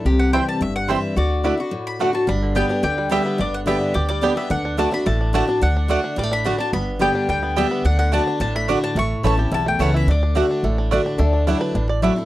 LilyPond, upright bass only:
\new Staff \with { instrumentName = "Upright bass" } { \clef bass \time 4/4 \key d \major \tempo 4 = 215 c,2 g,,2 | d,2 r2 | g,,2 d,2 | g,,2 d,2 |
d,2 a,,2 | d,2 a,,2 | g,,2 d,2 | d,2 a,,2 |
a,,4 a,,4 b,,4 cis,4 | d,2 a,,2 | d,2 a,,2 | }